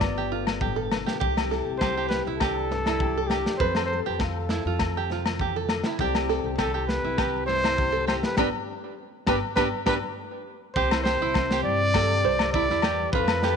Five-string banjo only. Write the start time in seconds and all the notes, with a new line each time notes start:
Already playing: F4
0.18 G4
0.32 F4
0.61 G4
0.76 A4
1.06 G4
1.20 G4
1.51 A4
1.82 G4
1.97 G4
2.27 E4
2.41 G4
2.72 muted five-string banjo stroke
2.87 E4
3.17 A4
3.31 G4
3.61 B4
3.77 A4
4.06 G4
4.21 muted five-string banjo stroke
4.50 E4
4.67 F4
4.97 G4
5.12 F4
5.41 G4
5.56 A4
5.86 E4
6.01 G4
6.29 A4
6.59 G4
6.74 G4
7.05 E4
7.18 G4
7.48 E4
7.64 E4
7.92 A4
8.07 G4
8.39 D4 G4 B4
9.28 D4 G4 B4
9.57 D4 G4 B4
9.86 D4 G4 B4
10.77 G4
10.91 E4
11.06 G4
11.22 E4
11.52 G4
11.95 A4
12.25 C5
12.55 E4
12.71 E4
12.84 G4
13.15 F4
13.44 G4